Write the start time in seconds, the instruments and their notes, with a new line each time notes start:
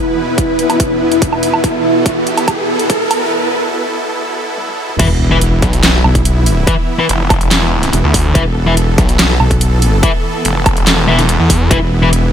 Already playing: supersaw synth E2 B2 B3 E4 B4, ambient pad E4 B4 E5, riser
0.38 kick, closed hi-hat
0.59 closed hi-hat
0.70 closed hi-hat, low woodblock
0.80 kick, closed hi-hat
1.12 closed hi-hat
1.22 kick, closed hi-hat
1.33 low woodblock
1.43 open hi-hat
1.54 low woodblock
1.64 supersaw synth A4, kick, closed hi-hat
2.06 kick, closed hi-hat
2.27 closed hi-hat
2.37 closed hi-hat, low woodblock
2.48 kick, closed hi-hat, low woodblock
2.79 closed hi-hat
2.90 kick, closed hi-hat
3.11 open hi-hat, low woodblock
4.58 high tom
4.68 high tom
4.89 mid tom
4.99 wobble bass E1, supersaw synth E3 B3 E4, distorted electric guitar E4 B4 E5, kick, closed hi-hat, crash, sub drop
5.31 distorted electric guitar E4 B4 E5
5.41 closed hi-hat
5.62 detuned saw bass B1, kick, closed hi-hat
5.73 closed hi-hat
5.83 snare, clap, closed hi-hat
6.04 wobble bass B1, low woodblock
6.15 kick, closed hi-hat
6.25 closed hi-hat
6.46 open hi-hat
6.67 distorted electric guitar E4 B4 E5, kick, closed hi-hat
6.99 distorted electric guitar E4 B4 E5
7.09 detuned saw bass F1, closed hi-hat
7.30 kick, closed hi-hat, low woodblock
7.41 closed hi-hat
7.51 detuned saw bass E1, snare, clap, closed hi-hat
7.83 snare, closed hi-hat
7.93 wobble bass E1, closed hi-hat
8.04 detuned saw bass D2
8.14 kick, open hi-hat
8.35 wobble bass E1, distorted electric guitar E4 B4 E5, supersaw synth A4, kick, closed hi-hat
8.67 distorted electric guitar E4 B4 E5
8.77 closed hi-hat
8.98 detuned saw bass B1, kick, closed hi-hat
9.09 closed hi-hat
9.19 snare, clap, closed hi-hat
9.40 wobble bass B1, low woodblock
9.51 kick, closed hi-hat
9.61 closed hi-hat
9.82 open hi-hat
10.03 distorted electric guitar E4 B4 E5, kick, closed hi-hat
10.45 detuned saw bass F1, closed hi-hat
10.66 kick, closed hi-hat, low woodblock
10.77 closed hi-hat
10.87 detuned saw bass E1, snare, clap, closed hi-hat
11.08 detuned saw bass E1, distorted electric guitar E4 B4 E5
11.19 snare, closed hi-hat
11.29 closed hi-hat
11.40 detuned saw bass E2
11.50 kick, open hi-hat
11.71 wobble bass E1, supersaw synth E4, distorted electric guitar E4 B4 E5, kick, closed hi-hat
12.02 distorted electric guitar E4 B4 E5
12.13 closed hi-hat